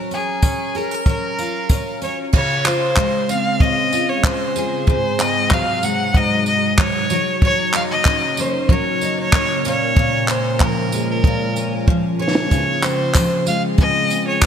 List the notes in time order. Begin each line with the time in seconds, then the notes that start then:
Already playing: F#3 C#4 A#4
0.11 C#4 G#4, tambourine
0.42 C#4, kick, tambourine
0.75 G#4 A#4, tambourine
0.91 A#4
1.06 F#3 A#4, kick, tambourine
1.39 F4, tambourine
1.69 C#4, kick, tambourine
2.02 C#4 C#5, tambourine
2.33 C#3 G#3 F4 G#4 C#5, kick, crash
2.65 F4 C5, clap, tambourine
2.96 G#3, kick, clap
3.29 C4 F5, tambourine
3.60 C#3 D#5, kick
3.93 F4, tambourine
4.09 C#5
4.23 G#3 C5, kick, clap
4.56 G#4, tambourine
4.87 G#2 C3 F#3 D#4 C5, kick
5.19 C4 D#5, clap, tambourine
5.51 F#3 F5, kick, clap
5.83 G#3 F#5, tambourine
6.14 G#2 D#5, kick
6.46 D#5, tambourine
6.78 F#3 C#5, kick, clap
7.10 F#2 C#3 F#3 A#3 A#4, tambourine
7.42 F#3 C#5, kick
7.73 D#4 F5, clap, tambourine
7.91 D#5
8.05 C#4, kick, clap
8.37 C#4 C5, tambourine
8.69 F#3 C#5, kick
9.01 D#4, tambourine
9.20 C#5
9.33 C#4, kick, clap
9.64 A#2 G#3 F4, tambourine
9.68 C#5
9.96 A#2, kick
10.28 C#4 C5, clap, tambourine
10.60 F3 A#4, kick, clap
10.92 G#3, tambourine
11.10 A#4
11.24 A#2, kick
11.56 C#4, tambourine
11.88 F3, kick
12.19 G#4 C#5
12.35 snare
12.51 C#3 G#4, kick, tambourine
12.83 C4 C5, clap, tambourine
13.14 F3, kick, clap, tambourine
13.46 G#3 F5, tambourine
13.78 C#3 D#5, kick, tambourine
14.08 C4, tambourine
14.28 C#5
14.41 F3, kick, clap, tambourine